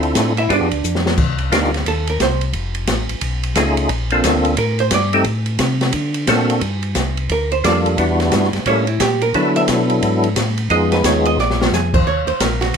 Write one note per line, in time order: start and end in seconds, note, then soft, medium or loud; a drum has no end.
0.00 0.14 D2 medium
0.00 0.33 C4 medium
0.00 0.33 D4 medium
0.00 0.33 E4 medium
0.00 0.33 F4 medium
0.00 0.33 A4 medium
0.00 ride soft
0.15 0.48 A2 medium
0.15 kick soft
0.15 snare medium
0.15 hi-hat pedal medium
0.15 ride medium
0.37 0.50 E4 medium
0.37 0.50 E5 medium
0.37 ride soft
0.49 0.61 G2 medium
0.49 0.69 B3 medium
0.49 0.69 D4 medium
0.49 1.03 D4 medium
0.49 0.69 F4 soft
0.49 0.69 G4 medium
0.49 0.69 G#4 medium
0.49 1.03 D5 medium
0.49 kick soft
0.49 ride medium
0.61 0.72 F2 medium
0.71 0.83 D2 medium
0.71 ride soft
0.84 1.17 F2 medium
0.84 hi-hat pedal medium
0.95 snare medium
1.06 snare medium
1.17 1.50 C2 medium
1.17 kick medium
1.17 crash medium
1.38 ride soft
1.52 1.85 D2 medium
1.52 1.71 A#3 medium
1.52 1.71 D4 medium
1.52 1.71 D#4 medium
1.52 1.71 F4 medium
1.52 1.71 G4 medium
1.52 kick soft
1.52 snare medium
1.52 hi-hat pedal soft
1.52 ride medium
1.64 snare soft
1.74 snare soft
1.74 ride soft
1.86 2.19 D#2 medium
1.86 2.08 A4 medium
1.86 kick soft
1.86 ride medium
2.07 2.21 A#4 medium
2.07 ride soft
2.20 2.53 C2 medium
2.20 2.42 C5 loud
2.20 kick soft
2.20 snare medium
2.20 hi-hat pedal medium
2.20 ride medium
2.41 ride soft
2.53 2.87 F1 medium
2.53 kick soft
2.53 ride medium
2.75 ride soft
2.87 3.08 A1 medium
2.87 kick soft
2.87 snare medium
2.87 hi-hat pedal medium
2.87 ride medium
3.09 3.15 A1 soft
3.09 ride soft
3.21 3.55 B1 medium
3.21 kick soft
3.21 ride medium
3.43 ride medium
3.55 3.89 C#2 medium
3.55 3.90 A3 medium
3.55 3.90 C#4 medium
3.55 3.90 D#4 medium
3.55 3.91 F4 medium
3.55 3.90 G#4 medium
3.55 kick soft
3.55 snare medium
3.55 hi-hat pedal medium
3.55 ride medium
3.77 ride medium
3.89 4.22 A#1 medium
3.89 kick soft
3.89 ride medium
4.10 4.56 A#3 medium
4.10 4.56 C4 medium
4.10 4.56 D4 medium
4.10 4.56 F4 medium
4.10 4.56 A4 medium
4.10 ride medium
4.24 4.57 D2 medium
4.24 kick soft
4.24 snare medium
4.24 hi-hat pedal medium
4.24 ride medium
4.45 ride soft
4.57 4.90 A2 medium
4.57 4.79 A#4 medium
4.57 kick soft
4.57 ride medium
4.79 4.92 C5 medium
4.79 ride soft
4.91 5.25 G2 medium
4.91 5.14 D5 medium
4.91 kick soft
4.91 snare medium
4.91 hi-hat pedal medium
4.91 ride medium
5.13 5.25 A3 medium
5.13 5.25 C4 medium
5.13 5.25 D#4 medium
5.13 5.25 G4 medium
5.13 5.25 A4 medium
5.13 ride soft
5.24 5.58 A2 medium
5.24 kick soft
5.24 ride medium
5.46 ride soft
5.59 5.92 C3 medium
5.59 kick soft
5.59 snare medium
5.59 hi-hat pedal medium
5.59 ride medium
5.81 snare medium
5.81 ride soft
5.93 6.27 D3 medium
5.93 kick soft
5.93 ride medium
6.14 ride medium
6.27 6.61 A#2 medium
6.27 6.62 A#3 medium
6.27 6.62 C4 medium
6.27 6.62 D4 medium
6.27 6.62 F#4 medium
6.27 6.62 A4 medium
6.27 kick soft
6.27 snare medium
6.27 hi-hat pedal medium
6.27 ride medium
6.50 ride medium
6.61 6.95 G2 medium
6.61 kick soft
6.61 ride medium
6.83 ride soft
6.95 7.29 C2 medium
6.95 kick soft
6.95 snare medium
6.95 hi-hat pedal medium
6.95 ride medium
7.17 ride soft
7.29 7.63 D2 medium
7.29 7.52 A#4 medium
7.29 kick soft
7.29 ride medium
7.52 7.64 C5 medium
7.52 ride soft
7.64 7.97 F2 medium
7.64 7.97 G3 medium
7.64 7.98 A#3 medium
7.64 7.97 D4 medium
7.64 7.98 F4 medium
7.64 7.98 A4 medium
7.64 7.78 D5 medium
7.64 kick soft
7.64 snare medium
7.64 hi-hat pedal medium
7.64 ride medium
7.86 ride soft
7.98 8.31 E2 medium
7.98 8.50 G3 medium
7.98 8.50 B3 medium
7.98 8.50 D4 medium
7.98 8.50 E4 medium
7.98 8.50 F#4 medium
7.98 kick soft
7.98 ride medium
8.20 snare soft
8.20 ride soft
8.32 8.52 G2 medium
8.32 kick soft
8.32 snare medium
8.32 hi-hat pedal medium
8.32 ride medium
8.44 snare soft
8.53 8.60 G2 soft
8.53 snare soft
8.53 ride soft
8.66 8.99 A2 medium
8.66 8.86 G3 medium
8.66 8.86 A#3 medium
8.66 8.86 C#4 medium
8.66 8.86 E4 medium
8.66 8.86 A4 medium
8.66 8.88 C#5 medium
8.66 kick soft
8.66 ride medium
8.87 9.00 E4 soft
8.87 ride soft
9.00 9.33 A#2 medium
9.00 9.21 G4 medium
9.00 kick soft
9.00 snare medium
9.00 hi-hat pedal medium
9.00 ride medium
9.21 9.34 A#4 medium
9.21 ride soft
9.34 9.67 D3 medium
9.34 10.29 F#3 medium
9.34 10.29 B3 medium
9.34 10.29 D4 medium
9.34 10.29 E4 medium
9.34 10.29 A4 medium
9.34 9.56 B4 medium
9.34 kick soft
9.34 ride medium
9.56 9.63 E5 loud
9.56 ride soft
9.68 10.01 B2 medium
9.68 kick soft
9.68 snare medium
9.68 hi-hat pedal medium
9.68 ride medium
9.90 ride soft
10.03 10.35 G#2 medium
10.03 kick soft
10.03 ride medium
10.24 ride soft
10.36 10.69 A2 medium
10.36 kick soft
10.36 snare medium
10.36 hi-hat pedal medium
10.36 ride medium
10.58 ride soft
10.70 11.03 F2 medium
10.70 11.38 G#3 medium
10.70 11.38 B3 soft
10.70 11.38 D#4 medium
10.70 11.38 F4 medium
10.70 11.38 G#4 medium
10.70 10.92 D#5 medium
10.70 kick soft
10.70 ride medium
10.92 11.04 B4 medium
10.92 snare soft
10.92 ride soft
11.04 11.37 D#2 medium
11.04 11.26 C#5 medium
11.04 kick soft
11.04 snare medium
11.04 hi-hat pedal medium
11.04 ride medium
11.25 11.38 D#5 loud
11.25 ride soft
11.37 11.70 A#1 medium
11.37 11.60 D5 medium
11.37 snare soft
11.50 snare medium
11.60 11.72 F4 medium
11.60 snare medium
11.72 12.05 F2 medium
11.72 11.94 G#4 medium
11.72 snare medium
11.72 hi-hat pedal medium
11.94 12.06 C5 medium
11.94 kick medium
11.94 crash medium
12.06 12.25 D#2 medium
12.06 12.27 C#5 medium
12.06 kick soft
12.27 12.33 D#2 soft
12.27 12.40 C5 medium
12.27 ride soft
12.40 12.73 A#1 medium
12.40 12.61 A#4 medium
12.40 kick soft
12.40 snare medium
12.40 hi-hat pedal medium
12.40 ride medium
12.61 12.77 F#4 medium
12.61 snare soft
12.61 ride soft